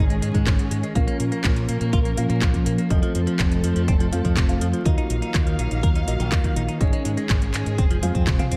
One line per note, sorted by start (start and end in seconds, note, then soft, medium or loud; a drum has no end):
0.00 0.18 G#1 medium
0.00 0.93 D#3 medium
0.00 0.93 G#3 medium
0.00 0.20 C#4 medium
0.00 2.87 C#4 medium
0.00 0.20 D#4 medium
0.00 0.20 G#4 medium
0.00 0.93 G#4 medium
0.00 0.20 C#5 loud
0.10 0.16 G#3 medium
0.10 closed hi-hat soft
0.22 0.32 G#2 medium
0.22 0.28 G#3 medium
0.22 closed hi-hat medium
0.34 0.45 G#2 medium
0.34 0.46 G#3 medium
0.34 kick medium
0.34 closed hi-hat soft
0.46 0.57 G#1 medium
0.46 0.52 D#3 loud
0.46 kick loud
0.46 clap loud
0.46 closed hi-hat medium
0.59 0.68 G#2 medium
0.59 closed hi-hat soft
0.71 0.81 G#2 medium
0.71 0.77 G#3 medium
0.71 closed hi-hat medium
0.83 0.93 G#3 medium
0.83 closed hi-hat soft
0.95 1.06 A#1 medium
0.95 4.82 F3 medium
0.95 1.05 A#3 medium
0.95 2.89 A#3 medium
0.95 2.14 C#4 medium
0.95 2.14 F4 medium
0.95 2.89 A#4 medium
0.95 2.14 A#4 medium
0.95 2.14 F5 loud
0.95 kick loud
0.95 closed hi-hat medium
1.07 1.17 A#3 loud
1.07 closed hi-hat soft
1.20 1.30 A#2 medium
1.20 1.25 A#3 medium
1.20 closed hi-hat medium
1.32 1.44 A#3 loud
1.32 closed hi-hat soft
1.44 1.65 A#1 medium
1.44 1.50 F3 medium
1.44 kick loud
1.44 clap loud
1.44 closed hi-hat medium
1.56 1.66 A#2 medium
1.56 closed hi-hat soft
1.69 1.79 A#2 medium
1.69 1.78 A#3 medium
1.69 closed hi-hat medium
1.81 1.91 A#2 medium
1.81 1.90 A#3 medium
1.81 closed hi-hat soft
1.93 2.13 A#1 medium
1.93 1.99 F4 loud
1.93 kick loud
1.93 closed hi-hat medium
2.05 2.11 A#3 medium
2.05 closed hi-hat soft
2.17 2.28 A#2 medium
2.17 2.23 A#3 medium
2.17 2.88 C#4 medium
2.17 2.88 F4 medium
2.17 2.88 A#4 medium
2.17 2.88 F5 loud
2.17 closed hi-hat medium
2.30 2.40 A#2 medium
2.30 2.41 A#3 loud
2.30 closed hi-hat soft
2.42 2.52 A#1 loud
2.42 2.47 F3 loud
2.42 kick loud
2.42 clap loud
2.42 closed hi-hat medium
2.54 2.63 A#2 medium
2.54 kick medium
2.54 closed hi-hat soft
2.66 2.76 A#2 medium
2.66 2.72 A#3 medium
2.66 closed hi-hat medium
2.78 2.88 A#3 medium
2.78 closed hi-hat soft
2.90 3.01 F1 medium
2.90 3.00 F3 medium
2.90 4.84 A3 medium
2.90 4.10 C4 medium
2.90 4.84 C4 medium
2.90 4.10 F4 medium
2.90 4.10 A4 medium
2.90 4.84 A4 medium
2.90 4.10 D#5 loud
2.90 kick loud
2.90 closed hi-hat medium
3.03 3.12 F3 loud
3.03 closed hi-hat soft
3.15 3.25 F2 medium
3.15 3.21 F3 medium
3.15 closed hi-hat medium
3.27 3.39 F3 loud
3.27 closed hi-hat soft
3.39 3.60 F1 medium
3.39 3.45 C3 loud
3.39 kick loud
3.39 clap loud
3.39 closed hi-hat medium
3.52 3.61 F2 medium
3.52 closed hi-hat soft
3.64 3.74 F2 medium
3.64 3.73 F3 medium
3.64 closed hi-hat medium
3.76 3.86 F2 medium
3.76 3.85 F3 medium
3.76 closed hi-hat soft
3.88 4.09 F1 medium
3.88 3.94 C4 loud
3.88 kick loud
3.88 closed hi-hat medium
4.00 4.06 F3 medium
4.00 closed hi-hat soft
4.12 4.23 F2 medium
4.12 4.18 F3 medium
4.12 4.46 C4 medium
4.12 4.46 F4 medium
4.12 4.46 A4 medium
4.12 4.46 F5 medium
4.12 closed hi-hat medium
4.25 4.35 F2 loud
4.25 4.36 F3 loud
4.25 kick medium
4.25 closed hi-hat soft
4.37 4.57 F1 medium
4.37 4.42 C3 loud
4.37 kick loud
4.37 clap loud
4.37 closed hi-hat medium
4.49 4.58 F2 medium
4.49 4.83 C4 medium
4.49 4.83 F4 medium
4.49 4.83 A4 medium
4.49 4.83 F5 medium
4.49 closed hi-hat soft
4.61 4.71 F2 medium
4.61 4.67 F3 medium
4.61 closed hi-hat medium
4.73 4.83 F3 medium
4.73 closed hi-hat soft
4.85 4.96 D#2 medium
4.85 7.75 D#3 medium
4.85 6.79 F#3 medium
4.85 6.05 A#3 medium
4.85 6.79 A#3 medium
4.85 4.95 D#4 medium
4.85 6.05 F4 medium
4.85 6.05 F#4 medium
4.85 6.05 D#5 loud
4.85 6.79 F5 medium
4.85 kick loud
4.85 closed hi-hat medium
4.98 5.07 D#4 medium
4.98 closed hi-hat soft
5.10 5.20 A#1 medium
5.10 5.16 D#4 medium
5.10 closed hi-hat medium
5.22 5.34 D#4 loud
5.22 closed hi-hat soft
5.34 5.55 D#2 medium
5.34 5.40 A#3 loud
5.34 kick loud
5.34 clap loud
5.34 closed hi-hat medium
5.47 5.56 D#3 medium
5.47 closed hi-hat soft
5.59 5.69 A#1 medium
5.59 5.68 D#4 medium
5.59 closed hi-hat medium
5.71 5.81 A#1 medium
5.71 5.80 D#4 medium
5.71 closed hi-hat soft
5.83 6.04 D#2 medium
5.83 5.89 A#4 loud
5.83 kick loud
5.83 closed hi-hat medium
5.95 6.01 D#4 medium
5.95 closed hi-hat soft
6.07 6.18 A#1 medium
6.07 6.78 A#3 medium
6.07 6.13 D#4 medium
6.07 6.78 F4 medium
6.07 6.78 F#4 medium
6.07 6.78 D#5 loud
6.07 closed hi-hat medium
6.20 6.30 A#1 medium
6.20 6.31 D#4 loud
6.20 closed hi-hat soft
6.32 6.42 D#2 loud
6.32 6.38 A#3 loud
6.32 kick loud
6.32 clap loud
6.32 closed hi-hat medium
6.44 6.54 D#3 medium
6.44 kick medium
6.44 closed hi-hat soft
6.56 6.67 A#1 medium
6.56 6.62 D#4 medium
6.56 closed hi-hat medium
6.68 6.78 D#4 medium
6.68 closed hi-hat soft
6.81 6.91 G#1 medium
6.81 6.90 G#3 medium
6.81 8.57 G#3 medium
6.81 7.77 C#4 medium
6.81 7.77 D#4 medium
6.81 7.77 G#4 medium
6.81 8.57 G#4 medium
6.81 7.77 C#5 loud
6.81 kick loud
6.81 closed hi-hat medium
6.93 7.02 G#3 medium
6.93 closed hi-hat soft
7.05 7.15 G#2 medium
7.05 7.11 G#3 medium
7.05 closed hi-hat loud
7.17 7.29 G#3 loud
7.17 closed hi-hat soft
7.29 7.50 G#1 medium
7.29 7.35 D#3 loud
7.29 kick loud
7.29 clap loud
7.29 closed hi-hat medium
7.42 7.51 G#2 medium
7.42 closed hi-hat soft
7.54 7.64 G#2 medium
7.54 7.63 G#3 medium
7.54 clap medium
7.54 closed hi-hat loud
7.66 7.76 G#2 medium
7.66 7.76 G#3 medium
7.66 closed hi-hat soft
7.78 7.99 F1 medium
7.78 8.57 F3 medium
7.78 7.84 C4 loud
7.78 8.57 C4 medium
7.78 kick loud
7.78 closed hi-hat medium
7.90 7.96 F3 medium
7.90 closed hi-hat soft
8.03 8.13 F2 medium
8.03 8.12 F3 medium
8.03 8.36 C4 medium
8.03 8.36 F4 medium
8.03 8.36 G#4 medium
8.03 8.36 F5 medium
8.03 closed hi-hat loud
8.03 high tom medium
8.15 8.25 F2 medium
8.15 8.24 C4 medium
8.15 kick medium
8.15 closed hi-hat soft
8.15 high tom medium
8.27 8.37 F1 medium
8.27 8.33 C3 medium
8.27 kick loud
8.27 clap loud
8.27 closed hi-hat medium
8.27 mid tom medium
8.39 8.57 C4 medium
8.39 8.45 C4 loud
8.39 8.57 F4 medium
8.39 8.57 G#4 medium
8.39 8.57 F5 medium
8.39 closed hi-hat soft
8.39 mid tom medium
8.51 8.57 F2 loud
8.51 8.57 C4 loud
8.51 closed hi-hat loud